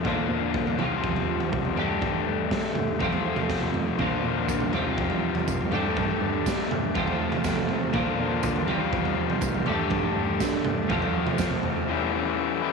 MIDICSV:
0, 0, Header, 1, 6, 480
1, 0, Start_track
1, 0, Tempo, 492611
1, 53, Time_signature, 4, 2, 24, 8
1, 12398, End_track
2, 0, Start_track
2, 0, Title_t, "Transistor combo organ"
2, 0, Program_c, 0, 18
2, 3899, Note_on_c, 0, 70, 66
2, 3902, Note_on_c, 0, 74, 58
2, 3905, Note_on_c, 0, 84, 73
2, 4609, Note_on_c, 0, 67, 65
2, 4611, Note_off_c, 0, 70, 0
2, 4611, Note_on_c, 0, 77, 56
2, 4613, Note_off_c, 0, 74, 0
2, 5554, Note_off_c, 0, 67, 0
2, 5565, Note_off_c, 0, 77, 0
2, 5565, Note_off_c, 0, 84, 0
2, 5566, Note_on_c, 0, 67, 63
2, 5574, Note_on_c, 0, 74, 62
2, 5574, Note_on_c, 0, 81, 66
2, 6764, Note_off_c, 0, 74, 0
2, 6764, Note_off_c, 0, 81, 0
2, 6790, Note_on_c, 0, 77, 61
2, 6791, Note_on_c, 0, 81, 72
2, 7711, Note_off_c, 0, 67, 0
2, 7734, Note_off_c, 0, 77, 0
2, 7735, Note_off_c, 0, 81, 0
2, 7739, Note_on_c, 0, 74, 60
2, 7740, Note_on_c, 0, 70, 73
2, 7746, Note_on_c, 0, 84, 69
2, 8450, Note_on_c, 0, 67, 67
2, 8451, Note_on_c, 0, 77, 59
2, 8452, Note_off_c, 0, 70, 0
2, 8452, Note_off_c, 0, 74, 0
2, 9405, Note_off_c, 0, 77, 0
2, 9406, Note_off_c, 0, 84, 0
2, 9424, Note_on_c, 0, 81, 74
2, 9428, Note_on_c, 0, 74, 65
2, 10609, Note_off_c, 0, 81, 0
2, 10611, Note_off_c, 0, 74, 0
2, 10629, Note_on_c, 0, 77, 66
2, 10634, Note_on_c, 0, 81, 76
2, 11542, Note_off_c, 0, 67, 0
2, 11573, Note_off_c, 0, 77, 0
2, 11574, Note_on_c, 0, 69, 64
2, 11574, Note_on_c, 0, 79, 64
2, 11575, Note_on_c, 0, 86, 81
2, 11576, Note_off_c, 0, 81, 0
2, 12398, Note_off_c, 0, 69, 0
2, 12398, Note_off_c, 0, 79, 0
2, 12398, Note_off_c, 0, 86, 0
2, 12398, End_track
3, 0, Start_track
3, 0, Title_t, "Clean electric guitar"
3, 0, Program_c, 1, 27
3, 72, Note_on_c, 1, 60, 84
3, 769, Note_off_c, 1, 60, 0
3, 2961, Note_on_c, 1, 67, 107
3, 3895, Note_off_c, 1, 67, 0
3, 3908, Note_on_c, 1, 60, 86
3, 4609, Note_off_c, 1, 60, 0
3, 6808, Note_on_c, 1, 67, 92
3, 7739, Note_off_c, 1, 67, 0
3, 7754, Note_on_c, 1, 60, 90
3, 8452, Note_off_c, 1, 60, 0
3, 10642, Note_on_c, 1, 67, 102
3, 11575, Note_off_c, 1, 67, 0
3, 12398, End_track
4, 0, Start_track
4, 0, Title_t, "Overdriven electric guitar"
4, 0, Program_c, 2, 29
4, 35, Note_on_c, 2, 46, 89
4, 46, Note_on_c, 2, 50, 85
4, 52, Note_on_c, 2, 58, 92
4, 60, Note_on_c, 2, 62, 90
4, 64, Note_on_c, 2, 65, 101
4, 750, Note_off_c, 2, 46, 0
4, 756, Note_off_c, 2, 50, 0
4, 756, Note_on_c, 2, 48, 79
4, 759, Note_off_c, 2, 58, 0
4, 763, Note_off_c, 2, 62, 0
4, 765, Note_off_c, 2, 65, 0
4, 769, Note_on_c, 2, 53, 83
4, 773, Note_on_c, 2, 55, 101
4, 783, Note_on_c, 2, 60, 93
4, 788, Note_on_c, 2, 65, 96
4, 1707, Note_off_c, 2, 55, 0
4, 1712, Note_off_c, 2, 48, 0
4, 1715, Note_off_c, 2, 53, 0
4, 1718, Note_on_c, 2, 55, 93
4, 1725, Note_off_c, 2, 60, 0
4, 1726, Note_on_c, 2, 57, 80
4, 1728, Note_off_c, 2, 65, 0
4, 1739, Note_on_c, 2, 62, 99
4, 1746, Note_on_c, 2, 67, 94
4, 2914, Note_off_c, 2, 55, 0
4, 2917, Note_off_c, 2, 57, 0
4, 2918, Note_on_c, 2, 41, 80
4, 2924, Note_off_c, 2, 62, 0
4, 2924, Note_on_c, 2, 48, 94
4, 2927, Note_off_c, 2, 67, 0
4, 2927, Note_on_c, 2, 53, 97
4, 2934, Note_on_c, 2, 57, 80
4, 2941, Note_on_c, 2, 60, 93
4, 2945, Note_on_c, 2, 65, 103
4, 3874, Note_off_c, 2, 41, 0
4, 3876, Note_off_c, 2, 48, 0
4, 3878, Note_off_c, 2, 53, 0
4, 3881, Note_off_c, 2, 57, 0
4, 3885, Note_off_c, 2, 60, 0
4, 3887, Note_off_c, 2, 65, 0
4, 3888, Note_on_c, 2, 46, 91
4, 3894, Note_on_c, 2, 50, 89
4, 3904, Note_on_c, 2, 58, 99
4, 3906, Note_on_c, 2, 62, 97
4, 3915, Note_on_c, 2, 65, 103
4, 4595, Note_off_c, 2, 46, 0
4, 4599, Note_on_c, 2, 48, 85
4, 4601, Note_off_c, 2, 50, 0
4, 4606, Note_off_c, 2, 58, 0
4, 4608, Note_off_c, 2, 62, 0
4, 4608, Note_on_c, 2, 53, 97
4, 4612, Note_off_c, 2, 65, 0
4, 4616, Note_on_c, 2, 55, 96
4, 4622, Note_on_c, 2, 60, 89
4, 4630, Note_on_c, 2, 65, 95
4, 5551, Note_off_c, 2, 55, 0
4, 5554, Note_off_c, 2, 48, 0
4, 5558, Note_off_c, 2, 53, 0
4, 5562, Note_on_c, 2, 55, 83
4, 5565, Note_off_c, 2, 60, 0
4, 5570, Note_off_c, 2, 65, 0
4, 5575, Note_on_c, 2, 57, 96
4, 5584, Note_on_c, 2, 62, 95
4, 5591, Note_on_c, 2, 67, 100
4, 6756, Note_off_c, 2, 55, 0
4, 6762, Note_off_c, 2, 57, 0
4, 6767, Note_off_c, 2, 62, 0
4, 6768, Note_on_c, 2, 41, 79
4, 6770, Note_off_c, 2, 67, 0
4, 6781, Note_on_c, 2, 48, 89
4, 6784, Note_on_c, 2, 53, 88
4, 6789, Note_on_c, 2, 57, 89
4, 6792, Note_on_c, 2, 60, 98
4, 6797, Note_on_c, 2, 65, 95
4, 7719, Note_off_c, 2, 41, 0
4, 7721, Note_off_c, 2, 48, 0
4, 7725, Note_on_c, 2, 46, 88
4, 7727, Note_off_c, 2, 53, 0
4, 7730, Note_off_c, 2, 57, 0
4, 7731, Note_off_c, 2, 60, 0
4, 7733, Note_off_c, 2, 65, 0
4, 7738, Note_on_c, 2, 50, 105
4, 7745, Note_on_c, 2, 58, 90
4, 7750, Note_on_c, 2, 62, 109
4, 7756, Note_on_c, 2, 65, 111
4, 8437, Note_off_c, 2, 46, 0
4, 8444, Note_off_c, 2, 50, 0
4, 8447, Note_off_c, 2, 58, 0
4, 8450, Note_off_c, 2, 62, 0
4, 8453, Note_off_c, 2, 65, 0
4, 8453, Note_on_c, 2, 48, 96
4, 8457, Note_on_c, 2, 53, 90
4, 8466, Note_on_c, 2, 55, 98
4, 8474, Note_on_c, 2, 60, 96
4, 8477, Note_on_c, 2, 65, 98
4, 9401, Note_off_c, 2, 48, 0
4, 9403, Note_off_c, 2, 53, 0
4, 9407, Note_off_c, 2, 55, 0
4, 9407, Note_on_c, 2, 55, 86
4, 9412, Note_off_c, 2, 60, 0
4, 9413, Note_off_c, 2, 65, 0
4, 9417, Note_on_c, 2, 57, 94
4, 9429, Note_on_c, 2, 62, 96
4, 9435, Note_on_c, 2, 67, 102
4, 10598, Note_off_c, 2, 55, 0
4, 10603, Note_off_c, 2, 57, 0
4, 10606, Note_on_c, 2, 41, 102
4, 10609, Note_off_c, 2, 62, 0
4, 10612, Note_off_c, 2, 67, 0
4, 10614, Note_on_c, 2, 48, 90
4, 10618, Note_on_c, 2, 53, 89
4, 10628, Note_on_c, 2, 57, 90
4, 10634, Note_on_c, 2, 60, 99
4, 10635, Note_on_c, 2, 65, 104
4, 11557, Note_off_c, 2, 41, 0
4, 11561, Note_off_c, 2, 48, 0
4, 11563, Note_off_c, 2, 53, 0
4, 11568, Note_off_c, 2, 57, 0
4, 11571, Note_off_c, 2, 60, 0
4, 11571, Note_off_c, 2, 65, 0
4, 11582, Note_on_c, 2, 45, 96
4, 11591, Note_on_c, 2, 52, 99
4, 11597, Note_on_c, 2, 55, 92
4, 11603, Note_on_c, 2, 61, 102
4, 11608, Note_on_c, 2, 64, 90
4, 11814, Note_off_c, 2, 64, 0
4, 11818, Note_on_c, 2, 64, 70
4, 11823, Note_off_c, 2, 61, 0
4, 11834, Note_off_c, 2, 55, 0
4, 11835, Note_on_c, 2, 61, 66
4, 11845, Note_on_c, 2, 55, 61
4, 12059, Note_off_c, 2, 45, 0
4, 12286, Note_off_c, 2, 64, 0
4, 12298, Note_off_c, 2, 61, 0
4, 12298, Note_on_c, 2, 64, 73
4, 12310, Note_off_c, 2, 55, 0
4, 12310, Note_on_c, 2, 61, 68
4, 12322, Note_on_c, 2, 55, 67
4, 12398, Note_off_c, 2, 52, 0
4, 12398, Note_off_c, 2, 55, 0
4, 12398, Note_off_c, 2, 61, 0
4, 12398, Note_off_c, 2, 64, 0
4, 12398, End_track
5, 0, Start_track
5, 0, Title_t, "Cello"
5, 0, Program_c, 3, 42
5, 48, Note_on_c, 3, 46, 82
5, 233, Note_off_c, 3, 46, 0
5, 287, Note_on_c, 3, 46, 99
5, 473, Note_off_c, 3, 46, 0
5, 529, Note_on_c, 3, 46, 95
5, 715, Note_off_c, 3, 46, 0
5, 772, Note_on_c, 3, 36, 80
5, 956, Note_off_c, 3, 36, 0
5, 1013, Note_on_c, 3, 41, 92
5, 1381, Note_off_c, 3, 41, 0
5, 1488, Note_on_c, 3, 36, 97
5, 1674, Note_off_c, 3, 36, 0
5, 1723, Note_on_c, 3, 43, 88
5, 1911, Note_off_c, 3, 43, 0
5, 1971, Note_on_c, 3, 43, 89
5, 2156, Note_off_c, 3, 43, 0
5, 2206, Note_on_c, 3, 43, 91
5, 2393, Note_off_c, 3, 43, 0
5, 2451, Note_on_c, 3, 55, 91
5, 2637, Note_off_c, 3, 55, 0
5, 2687, Note_on_c, 3, 43, 81
5, 2874, Note_off_c, 3, 43, 0
5, 2930, Note_on_c, 3, 41, 92
5, 3300, Note_off_c, 3, 41, 0
5, 3408, Note_on_c, 3, 41, 84
5, 3595, Note_off_c, 3, 41, 0
5, 3650, Note_on_c, 3, 41, 94
5, 3837, Note_off_c, 3, 41, 0
5, 3888, Note_on_c, 3, 46, 88
5, 4075, Note_off_c, 3, 46, 0
5, 4130, Note_on_c, 3, 46, 86
5, 4316, Note_off_c, 3, 46, 0
5, 4371, Note_on_c, 3, 46, 86
5, 4557, Note_off_c, 3, 46, 0
5, 4611, Note_on_c, 3, 36, 78
5, 4797, Note_off_c, 3, 36, 0
5, 4853, Note_on_c, 3, 41, 96
5, 5222, Note_off_c, 3, 41, 0
5, 5339, Note_on_c, 3, 42, 88
5, 5522, Note_off_c, 3, 42, 0
5, 5569, Note_on_c, 3, 43, 89
5, 5756, Note_off_c, 3, 43, 0
5, 5814, Note_on_c, 3, 43, 89
5, 5999, Note_off_c, 3, 43, 0
5, 6054, Note_on_c, 3, 43, 99
5, 6239, Note_off_c, 3, 43, 0
5, 6298, Note_on_c, 3, 55, 92
5, 6481, Note_off_c, 3, 55, 0
5, 6539, Note_on_c, 3, 43, 82
5, 6722, Note_off_c, 3, 43, 0
5, 6778, Note_on_c, 3, 41, 94
5, 7145, Note_off_c, 3, 41, 0
5, 7254, Note_on_c, 3, 41, 89
5, 7439, Note_off_c, 3, 41, 0
5, 7504, Note_on_c, 3, 48, 85
5, 7685, Note_off_c, 3, 48, 0
5, 7734, Note_on_c, 3, 46, 98
5, 7919, Note_off_c, 3, 46, 0
5, 7983, Note_on_c, 3, 46, 90
5, 8164, Note_off_c, 3, 46, 0
5, 8220, Note_on_c, 3, 50, 91
5, 8403, Note_off_c, 3, 50, 0
5, 8459, Note_on_c, 3, 36, 84
5, 8643, Note_off_c, 3, 36, 0
5, 8701, Note_on_c, 3, 41, 81
5, 9067, Note_off_c, 3, 41, 0
5, 9176, Note_on_c, 3, 36, 98
5, 9360, Note_off_c, 3, 36, 0
5, 9427, Note_on_c, 3, 43, 83
5, 9607, Note_off_c, 3, 43, 0
5, 9656, Note_on_c, 3, 43, 90
5, 9840, Note_off_c, 3, 43, 0
5, 9895, Note_on_c, 3, 43, 96
5, 10080, Note_off_c, 3, 43, 0
5, 10139, Note_on_c, 3, 55, 92
5, 10322, Note_off_c, 3, 55, 0
5, 10374, Note_on_c, 3, 43, 85
5, 10559, Note_off_c, 3, 43, 0
5, 10621, Note_on_c, 3, 41, 95
5, 10987, Note_off_c, 3, 41, 0
5, 11097, Note_on_c, 3, 41, 99
5, 11281, Note_off_c, 3, 41, 0
5, 11338, Note_on_c, 3, 41, 91
5, 11521, Note_off_c, 3, 41, 0
5, 12398, End_track
6, 0, Start_track
6, 0, Title_t, "Drums"
6, 47, Note_on_c, 9, 43, 82
6, 49, Note_on_c, 9, 36, 88
6, 144, Note_off_c, 9, 43, 0
6, 146, Note_off_c, 9, 36, 0
6, 529, Note_on_c, 9, 36, 103
6, 626, Note_off_c, 9, 36, 0
6, 654, Note_on_c, 9, 43, 80
6, 752, Note_off_c, 9, 43, 0
6, 769, Note_on_c, 9, 43, 85
6, 866, Note_off_c, 9, 43, 0
6, 1011, Note_on_c, 9, 36, 104
6, 1011, Note_on_c, 9, 43, 74
6, 1108, Note_off_c, 9, 36, 0
6, 1109, Note_off_c, 9, 43, 0
6, 1134, Note_on_c, 9, 43, 83
6, 1231, Note_off_c, 9, 43, 0
6, 1368, Note_on_c, 9, 43, 77
6, 1466, Note_off_c, 9, 43, 0
6, 1487, Note_on_c, 9, 47, 71
6, 1490, Note_on_c, 9, 36, 105
6, 1584, Note_off_c, 9, 47, 0
6, 1587, Note_off_c, 9, 36, 0
6, 1607, Note_on_c, 9, 43, 66
6, 1705, Note_off_c, 9, 43, 0
6, 1729, Note_on_c, 9, 43, 84
6, 1826, Note_off_c, 9, 43, 0
6, 1965, Note_on_c, 9, 43, 75
6, 1969, Note_on_c, 9, 36, 99
6, 2062, Note_off_c, 9, 43, 0
6, 2067, Note_off_c, 9, 36, 0
6, 2448, Note_on_c, 9, 36, 94
6, 2450, Note_on_c, 9, 38, 79
6, 2546, Note_off_c, 9, 36, 0
6, 2548, Note_off_c, 9, 38, 0
6, 2681, Note_on_c, 9, 43, 77
6, 2681, Note_on_c, 9, 47, 82
6, 2779, Note_off_c, 9, 43, 0
6, 2779, Note_off_c, 9, 47, 0
6, 2919, Note_on_c, 9, 43, 74
6, 2928, Note_on_c, 9, 36, 102
6, 3017, Note_off_c, 9, 43, 0
6, 3025, Note_off_c, 9, 36, 0
6, 3045, Note_on_c, 9, 43, 80
6, 3142, Note_off_c, 9, 43, 0
6, 3277, Note_on_c, 9, 43, 80
6, 3277, Note_on_c, 9, 47, 80
6, 3374, Note_off_c, 9, 43, 0
6, 3374, Note_off_c, 9, 47, 0
6, 3406, Note_on_c, 9, 38, 75
6, 3407, Note_on_c, 9, 36, 106
6, 3504, Note_off_c, 9, 36, 0
6, 3504, Note_off_c, 9, 38, 0
6, 3518, Note_on_c, 9, 43, 70
6, 3518, Note_on_c, 9, 47, 72
6, 3615, Note_off_c, 9, 43, 0
6, 3615, Note_off_c, 9, 47, 0
6, 3646, Note_on_c, 9, 43, 88
6, 3743, Note_off_c, 9, 43, 0
6, 3885, Note_on_c, 9, 43, 80
6, 3890, Note_on_c, 9, 36, 94
6, 3982, Note_off_c, 9, 43, 0
6, 3987, Note_off_c, 9, 36, 0
6, 4371, Note_on_c, 9, 36, 104
6, 4375, Note_on_c, 9, 54, 88
6, 4468, Note_off_c, 9, 36, 0
6, 4472, Note_off_c, 9, 54, 0
6, 4486, Note_on_c, 9, 43, 82
6, 4584, Note_off_c, 9, 43, 0
6, 4609, Note_on_c, 9, 43, 96
6, 4707, Note_off_c, 9, 43, 0
6, 4850, Note_on_c, 9, 43, 83
6, 4853, Note_on_c, 9, 36, 104
6, 4948, Note_off_c, 9, 43, 0
6, 4950, Note_off_c, 9, 36, 0
6, 4968, Note_on_c, 9, 43, 81
6, 5066, Note_off_c, 9, 43, 0
6, 5212, Note_on_c, 9, 43, 88
6, 5309, Note_off_c, 9, 43, 0
6, 5337, Note_on_c, 9, 54, 101
6, 5338, Note_on_c, 9, 36, 101
6, 5338, Note_on_c, 9, 47, 75
6, 5434, Note_off_c, 9, 54, 0
6, 5435, Note_off_c, 9, 36, 0
6, 5436, Note_off_c, 9, 47, 0
6, 5464, Note_on_c, 9, 43, 73
6, 5561, Note_off_c, 9, 43, 0
6, 5574, Note_on_c, 9, 43, 94
6, 5671, Note_off_c, 9, 43, 0
6, 5812, Note_on_c, 9, 43, 84
6, 5815, Note_on_c, 9, 36, 107
6, 5910, Note_off_c, 9, 43, 0
6, 5913, Note_off_c, 9, 36, 0
6, 6297, Note_on_c, 9, 36, 98
6, 6297, Note_on_c, 9, 54, 98
6, 6304, Note_on_c, 9, 38, 72
6, 6394, Note_off_c, 9, 36, 0
6, 6394, Note_off_c, 9, 54, 0
6, 6402, Note_off_c, 9, 38, 0
6, 6539, Note_on_c, 9, 43, 89
6, 6539, Note_on_c, 9, 47, 74
6, 6637, Note_off_c, 9, 43, 0
6, 6637, Note_off_c, 9, 47, 0
6, 6772, Note_on_c, 9, 43, 79
6, 6776, Note_on_c, 9, 36, 101
6, 6870, Note_off_c, 9, 43, 0
6, 6874, Note_off_c, 9, 36, 0
6, 6893, Note_on_c, 9, 43, 77
6, 6991, Note_off_c, 9, 43, 0
6, 7133, Note_on_c, 9, 43, 87
6, 7133, Note_on_c, 9, 47, 83
6, 7231, Note_off_c, 9, 43, 0
6, 7231, Note_off_c, 9, 47, 0
6, 7250, Note_on_c, 9, 54, 94
6, 7255, Note_on_c, 9, 36, 119
6, 7257, Note_on_c, 9, 38, 76
6, 7347, Note_off_c, 9, 54, 0
6, 7353, Note_off_c, 9, 36, 0
6, 7355, Note_off_c, 9, 38, 0
6, 7373, Note_on_c, 9, 43, 77
6, 7373, Note_on_c, 9, 47, 74
6, 7470, Note_off_c, 9, 43, 0
6, 7470, Note_off_c, 9, 47, 0
6, 7491, Note_on_c, 9, 43, 85
6, 7588, Note_off_c, 9, 43, 0
6, 7730, Note_on_c, 9, 43, 88
6, 7735, Note_on_c, 9, 36, 106
6, 7828, Note_off_c, 9, 43, 0
6, 7833, Note_off_c, 9, 36, 0
6, 8213, Note_on_c, 9, 54, 89
6, 8219, Note_on_c, 9, 36, 107
6, 8311, Note_off_c, 9, 54, 0
6, 8316, Note_off_c, 9, 36, 0
6, 8341, Note_on_c, 9, 43, 81
6, 8438, Note_off_c, 9, 43, 0
6, 8457, Note_on_c, 9, 43, 85
6, 8554, Note_off_c, 9, 43, 0
6, 8700, Note_on_c, 9, 36, 99
6, 8701, Note_on_c, 9, 43, 82
6, 8797, Note_off_c, 9, 36, 0
6, 8798, Note_off_c, 9, 43, 0
6, 8822, Note_on_c, 9, 43, 92
6, 8919, Note_off_c, 9, 43, 0
6, 9060, Note_on_c, 9, 43, 78
6, 9157, Note_off_c, 9, 43, 0
6, 9171, Note_on_c, 9, 47, 88
6, 9175, Note_on_c, 9, 54, 102
6, 9178, Note_on_c, 9, 36, 99
6, 9269, Note_off_c, 9, 47, 0
6, 9273, Note_off_c, 9, 54, 0
6, 9275, Note_off_c, 9, 36, 0
6, 9299, Note_on_c, 9, 43, 76
6, 9397, Note_off_c, 9, 43, 0
6, 9412, Note_on_c, 9, 43, 89
6, 9509, Note_off_c, 9, 43, 0
6, 9650, Note_on_c, 9, 43, 89
6, 9656, Note_on_c, 9, 36, 103
6, 9747, Note_off_c, 9, 43, 0
6, 9753, Note_off_c, 9, 36, 0
6, 10137, Note_on_c, 9, 36, 99
6, 10137, Note_on_c, 9, 54, 88
6, 10140, Note_on_c, 9, 38, 65
6, 10235, Note_off_c, 9, 36, 0
6, 10235, Note_off_c, 9, 54, 0
6, 10237, Note_off_c, 9, 38, 0
6, 10373, Note_on_c, 9, 43, 83
6, 10373, Note_on_c, 9, 47, 91
6, 10471, Note_off_c, 9, 43, 0
6, 10471, Note_off_c, 9, 47, 0
6, 10617, Note_on_c, 9, 43, 78
6, 10619, Note_on_c, 9, 36, 112
6, 10714, Note_off_c, 9, 43, 0
6, 10717, Note_off_c, 9, 36, 0
6, 10738, Note_on_c, 9, 43, 83
6, 10836, Note_off_c, 9, 43, 0
6, 10978, Note_on_c, 9, 43, 80
6, 10978, Note_on_c, 9, 47, 78
6, 11075, Note_off_c, 9, 43, 0
6, 11075, Note_off_c, 9, 47, 0
6, 11091, Note_on_c, 9, 54, 93
6, 11099, Note_on_c, 9, 36, 101
6, 11104, Note_on_c, 9, 38, 76
6, 11188, Note_off_c, 9, 54, 0
6, 11196, Note_off_c, 9, 36, 0
6, 11202, Note_off_c, 9, 38, 0
6, 11212, Note_on_c, 9, 43, 77
6, 11212, Note_on_c, 9, 47, 76
6, 11309, Note_off_c, 9, 43, 0
6, 11309, Note_off_c, 9, 47, 0
6, 11333, Note_on_c, 9, 43, 88
6, 11431, Note_off_c, 9, 43, 0
6, 12398, End_track
0, 0, End_of_file